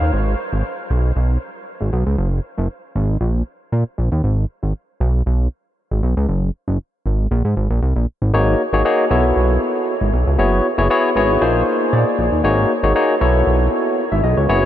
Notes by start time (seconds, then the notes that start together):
Already playing: F5
0.01 D#2
0.13 G#1
0.53 G#1
0.90 B1
1.16 B1
1.81 G#1
1.93 B1
2.06 C#2
2.18 F#1
2.58 F#1
2.95 G#1
3.21 A#1
3.72 A#2
3.98 A#1
4.12 D#2
4.24 G#1
4.63 G#1
5.00 B1
5.26 B1
5.91 G#1
6.03 B1
6.17 C#2
6.29 F#1
6.68 F#1
7.06 G#1
7.31 A#1
7.45 G#2
7.57 G#1
7.70 A#1
7.82 C2
7.96 A#1
8.22 G#1
8.34 G#1 A#3 D#4 F#4 G#4 C#5
8.73 G#1 A#3 D#4 F#4 G#4 C#5
8.85 A#3 D#4 F#4 G#4 C#5
9.10 B1 B3 E4 F#4 A4 C#5
9.36 B1
10.01 G#1
10.13 B1
10.27 C#2
10.38 F#1 B3 E4 F#4 G#4 C#5
10.78 F#1 B3 E4 F#4 G#4 C#5
10.90 B3 E4 F#4 G#4 C#5
11.16 G#1 B3 E4 F#4 G#4 C#5
11.41 A#1 A#3 D#4 F4 G#4 C5
11.93 A#2 D5
12.19 A#1
12.32 D#2
12.44 G#1 A#3 D#4 F#4 G#4 C#5
12.83 G#1 A#3 D#4 F#4 G#4 C#5
12.95 A#3 D#4 F#4 G#4 C#5
13.21 B1 B3 E4 F#4 A4 C#5
13.47 B1
14.12 G#1 E5
14.24 B1 D#5
14.37 C#2 C#5
14.49 F#1 B3 E4 F#4 G#4 C#5